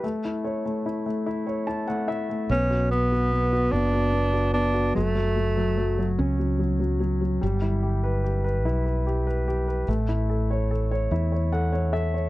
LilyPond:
<<
  \new Staff \with { instrumentName = "Grand piano" } { \time 6/8 \key a \mixolydian \tempo 4. = 49 << { r2 a''16 fis''16 e''8 | r2. | r2. | r2. |
r2 fis''8 e''8 | } \\ { a16 e'16 cis''16 a16 e'16 a16 e'16 cis''16 e'16 a16 e'16 a16 | b16 fis'16 b16 fis'16 b16 fis'16 b16 fis'16 b16 fis'16 b16 fis'16 | fis16 fis16 fis16 fis16 fis16 fis16 cis'16 fis16 fis16 fis16 fis16 fis16 | g16 e'16 g'16 b'16 g'16 b'16 e'16 b'16 g'16 b'16 g'16 b'16 |
a16 e'16 a'16 cis''16 a'16 cis''16 e'16 cis''16 a'16 cis''16 a'16 cis''16 | } >> }
  \new Staff \with { instrumentName = "Tenor saxophone" } { \time 6/8 \key a \mixolydian r2. | cis'8 b4 d'4 d'8 | a4. r4. | r2. |
r2. | }
  \new Staff \with { instrumentName = "Fretless electric bass" } { \clef bass \time 6/8 \key a \mixolydian r2. | b,,4. fis,,4. | fis,,4. cis,4. | g,,4. b,,4. |
a,,4. e,4. | }
>>